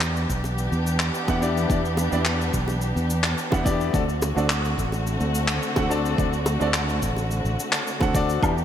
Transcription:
0.00 0.25 E2 medium
0.00 3.89 E3 medium
0.00 3.90 B3 medium
0.00 3.90 D4 medium
0.00 3.90 G4 medium
0.00 clap medium
0.00 cabasa medium
0.16 cabasa soft
0.30 0.68 B1 medium
0.30 kick medium
0.30 cabasa medium
0.44 high bongo medium
0.44 cabasa soft
0.58 cabasa medium
0.72 1.09 E2 medium
0.72 cabasa soft
0.87 cabasa medium
1.00 clap medium
1.00 cabasa medium
1.14 cabasa medium
1.27 1.65 E2 medium
1.27 1.38 B3 medium
1.27 1.38 D4 medium
1.27 1.39 E4 medium
1.27 1.39 G4 medium
1.27 1.39 F#5 medium
1.27 kick loud
1.27 high bongo medium
1.27 cabasa soft
1.40 1.66 B3 medium
1.40 1.66 D4 medium
1.40 1.67 E4 medium
1.40 1.67 G4 medium
1.40 1.67 D5 medium
1.40 cabasa medium
1.57 cabasa soft
1.69 2.08 E2 medium
1.69 1.78 B3 medium
1.69 1.78 D4 medium
1.69 1.79 E4 medium
1.69 1.79 G4 medium
1.69 1.79 D5 medium
1.69 kick loud
1.69 cabasa medium
1.85 cabasa soft
1.97 high bongo medium
1.97 cabasa medium
2.11 2.50 E2 medium
2.11 2.20 B3 medium
2.11 2.20 D4 medium
2.11 2.20 E4 medium
2.11 2.21 G4 medium
2.11 2.21 D5 medium
2.11 cabasa soft
2.25 clap medium
2.25 cabasa medium
2.41 cabasa soft
2.54 2.92 B1 medium
2.54 kick medium
2.54 cabasa medium
2.68 high bongo medium
2.68 cabasa soft
2.81 cabasa medium
2.96 3.34 E2 medium
2.96 cabasa soft
3.10 cabasa medium
3.24 clap medium
3.24 cabasa soft
3.38 cabasa medium
3.51 3.90 E2 medium
3.51 3.62 B3 medium
3.51 3.62 D4 medium
3.51 3.62 E4 medium
3.51 3.63 G4 medium
3.51 3.63 F#5 medium
3.51 kick loud
3.51 high bongo medium
3.51 cabasa soft
3.64 3.90 B3 medium
3.64 3.90 D4 medium
3.64 3.90 E4 medium
3.64 3.91 G4 medium
3.64 3.91 D5 medium
3.64 kick loud
3.64 cabasa medium
3.81 cabasa soft
3.92 4.32 D2 medium
3.92 8.38 D3 medium
3.92 8.38 A3 medium
3.92 4.02 C4 medium
3.92 8.38 C4 medium
3.92 4.02 D4 medium
3.92 8.38 F#4 medium
3.92 4.03 F#4 medium
3.92 4.03 A4 medium
3.92 4.03 D5 medium
3.92 kick loud
3.92 cabasa medium
4.09 cabasa soft
4.22 high bongo loud
4.22 cabasa medium
4.35 4.74 D2 medium
4.35 4.44 C4 medium
4.35 4.44 D4 medium
4.35 4.45 F#4 medium
4.35 4.45 A4 medium
4.35 4.45 D5 medium
4.35 cabasa soft
4.50 clap medium
4.50 cabasa medium
4.65 cabasa soft
4.78 5.16 A1 medium
4.78 kick medium
4.78 cabasa medium
4.92 high bongo medium
4.92 cabasa soft
5.07 cabasa medium
5.21 5.58 D2 medium
5.21 cabasa soft
5.35 cabasa medium
5.48 clap medium
5.48 cabasa soft
5.63 cabasa medium
5.75 6.14 D2 medium
5.75 5.86 C4 medium
5.75 5.86 D4 medium
5.75 5.87 F#4 medium
5.75 5.87 A4 medium
5.75 5.87 F#5 medium
5.75 kick loud
5.75 high bongo medium
5.75 cabasa soft
5.89 6.14 C4 medium
5.89 6.15 D4 medium
5.89 6.15 F#4 medium
5.89 6.15 A4 medium
5.89 6.15 D5 medium
5.89 cabasa medium
6.06 cabasa soft
6.17 6.56 D2 medium
6.17 6.26 C4 medium
6.17 6.27 D4 medium
6.17 6.27 F#4 medium
6.17 6.27 A4 medium
6.17 6.28 D5 medium
6.17 kick loud
6.17 cabasa medium
6.33 cabasa soft
6.46 high bongo loud
6.46 cabasa medium
6.60 6.98 D2 medium
6.60 6.68 C4 medium
6.60 6.69 D4 medium
6.60 6.69 F#4 medium
6.60 6.69 A4 medium
6.60 6.69 D5 medium
6.60 cabasa medium
6.74 clap medium
6.74 cabasa medium
6.89 cabasa soft
7.02 7.40 A1 medium
7.02 kick medium
7.02 cabasa medium
7.17 high bongo medium
7.17 cabasa soft
7.31 cabasa medium
7.45 7.56 A1 medium
7.45 cabasa soft
7.60 cabasa medium
7.73 clap medium
7.73 cabasa soft
7.87 cabasa medium
8.00 8.38 D2 medium
8.00 8.11 C4 medium
8.00 8.11 D4 medium
8.00 8.11 F#4 medium
8.00 8.11 A4 medium
8.00 8.12 F#5 medium
8.00 kick loud
8.00 high bongo medium
8.00 cabasa soft
8.14 8.39 C4 medium
8.14 8.39 D4 medium
8.14 8.39 F#4 medium
8.14 8.40 A4 medium
8.14 8.40 D5 loud
8.14 kick loud
8.14 cabasa medium
8.29 cabasa medium
8.41 8.65 E2 medium
8.41 8.65 E3 medium
8.41 8.51 B3 medium
8.41 8.65 B3 medium
8.41 8.51 D4 medium
8.41 8.65 D4 medium
8.41 8.51 E4 medium
8.41 8.65 G4 medium
8.41 8.52 G4 medium
8.41 8.52 D5 medium
8.41 kick loud
8.41 cabasa medium
8.41 low woodblock medium
8.58 cabasa soft

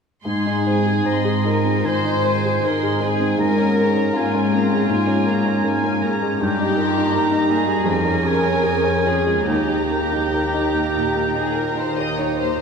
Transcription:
0.25 0.96 G#2 soft
0.25 1.80 G#2 soft
0.25 0.64 G#3 soft
0.25 1.08 D#4 soft
0.25 0.64 D#4 soft
0.25 1.42 G#4 medium
0.25 1.08 G#5 soft
0.25 0.64 C6 soft
0.46 0.78 D#4 soft
0.65 1.06 C4 soft
0.65 1.06 G#4 soft
0.65 0.98 C5 soft
0.69 1.08 G#5 soft
0.86 1.18 G#4 soft
1.05 1.75 G#2 soft
1.05 1.45 G#3 soft
1.05 1.44 C4 soft
1.05 1.45 D#4 soft
1.05 1.37 C5 soft
1.05 1.87 A#5 soft
1.09 1.47 C6 soft
1.25 1.56 G#4 soft
1.45 1.84 C4 soft
1.45 1.76 D#4 soft
1.45 2.65 F4 soft
1.45 1.85 G#4 soft
1.45 1.84 A#4 medium
1.49 1.86 G#5 soft
1.64 1.96 C4 soft
1.84 2.55 G#2 soft
1.84 2.16 D#3 soft
1.84 2.22 G#3 soft
1.84 2.22 D#4 soft
1.84 2.64 C5 medium
1.84 2.64 G#5 soft
1.84 2.22 C6 soft
2.04 2.36 D#4 soft
2.24 2.65 C4 soft
2.24 2.65 G#4 soft
2.24 2.56 C5 soft
2.24 2.65 G#5 soft
2.46 2.76 G#4 soft
2.63 3.31 G#2 soft
2.63 3.03 G#3 soft
2.63 3.41 D#4 soft
2.63 3.03 D#4 soft
2.63 3.02 A#4 medium
2.63 2.94 C5 soft
2.63 3.38 G#5 soft
2.67 3.04 C6 soft
2.83 3.13 G#4 soft
3.00 3.40 C4 soft
3.00 3.31 D#4 soft
3.00 3.40 G#4 soft
3.05 3.41 G#5 soft
3.20 3.39 C4 soft
3.38 4.86 G#2 soft
3.38 4.07 G#2 soft
3.38 3.75 A#3 soft
3.38 4.14 C#4 soft
3.38 3.75 F4 soft
3.38 4.15 A#4 medium
3.38 3.76 G#5 soft
3.38 3.77 A#5 soft
3.57 3.89 C#4 soft
3.78 4.16 C#4 soft
3.78 4.16 G#4 soft
3.78 4.08 A#4 soft
3.78 4.18 A#5 soft
3.82 4.18 A#5 soft
3.95 4.27 C#4 soft
4.15 4.82 G#2 medium
4.15 4.54 A#3 soft
4.15 4.55 C#4 soft
4.15 6.04 F4 medium
4.15 4.54 F4 soft
4.15 4.46 A#4 soft
4.15 6.45 G#5 soft
4.19 4.55 G#5 soft
4.34 4.65 C#4 soft
4.53 4.83 A#3 soft
4.53 4.89 C4 soft
4.53 4.91 C#4 soft
4.53 4.91 G#4 soft
4.53 4.92 A#5 soft
4.72 5.02 G#3 soft
4.89 6.37 G#2 soft
4.89 5.57 G#2 soft
4.89 5.66 A#3 soft
4.89 5.25 A#3 soft
4.89 5.25 F4 soft
4.89 5.26 G#5 soft
5.07 5.38 C#4 soft
5.25 5.65 C#4 soft
5.25 5.65 G#4 soft
5.25 5.57 A#4 soft
5.29 5.67 A#5 soft
5.45 5.77 C#4 soft
5.64 6.33 G#2 soft
5.64 6.04 A#3 soft
5.64 6.02 C#4 soft
5.64 6.04 F4 soft
5.64 5.96 A#4 soft
5.64 6.05 G#5 soft
5.84 6.15 C#4 soft
6.02 6.34 A#3 soft
6.02 6.43 C#4 soft
6.02 6.42 C#4 soft
6.02 6.43 G#4 soft
6.02 6.39 A#5 soft
6.22 6.42 G#3 soft
6.40 7.85 G2 medium
6.40 7.86 G2 soft
6.40 7.85 A#3 soft
6.40 7.85 D#4 soft
6.40 6.81 D#4 soft
6.40 7.48 G4 medium
6.40 6.92 G5 soft
6.40 7.85 A#5 soft
6.59 6.90 D#4 soft
6.77 7.18 F4 medium
6.77 7.08 A#4 soft
6.98 7.27 D#4 soft
7.14 7.64 D#4 soft
7.14 7.44 A#4 soft
7.14 7.86 A#5 soft
7.31 7.62 D#4 soft
7.50 7.81 A#3 soft
7.54 7.90 G#4 medium
7.66 7.87 G3 soft
7.85 9.43 F2 soft
7.85 9.48 C#4 soft
7.85 9.45 G#4 soft
7.89 9.46 F2 soft
7.89 8.62 C#4 soft
7.89 9.07 A#4 medium
7.89 9.49 G#5 soft
7.89 8.28 A#5 soft
8.05 8.37 C#4 soft
8.24 8.56 G#4 soft
8.24 8.64 G#5 soft
8.45 8.78 C#5 soft
8.63 9.07 C#4 soft
8.63 8.97 G#4 soft
8.63 9.48 G#5 soft
8.84 9.18 C#5 soft
9.05 9.40 C#4 soft
9.05 9.51 F4 soft
9.05 9.49 G#4 soft
9.26 9.48 G#3 soft
9.47 11.12 D#2 soft
9.47 12.60 D#2 soft
9.47 10.23 A#3 soft
9.47 10.25 D#4 soft
9.47 12.52 D#4 soft
9.47 11.33 G4 medium
9.47 12.50 G5 soft
9.47 12.60 A#5 soft
9.68 10.03 D#4 soft
9.91 10.25 A#4 soft
10.13 10.47 D#4 soft
10.33 11.53 D#4 soft
10.33 10.67 A#4 soft
10.54 10.87 D#4 soft
10.74 11.08 A#3 soft
10.95 11.28 A#2 soft
11.14 11.48 A#3 soft
11.35 11.69 D#4 soft
11.35 11.58 G#4 soft
11.54 11.99 F4 soft
11.54 11.89 A#4 soft
11.54 11.77 A#4 soft
11.76 12.11 D#4 soft
11.76 12.00 C5 soft
11.98 12.62 G4 soft
11.98 12.33 A#4 soft
11.98 12.21 D#5 soft
12.18 12.55 D#4 soft
12.18 12.41 C#5 soft
12.40 12.62 A#3 soft
12.40 12.62 C5 soft

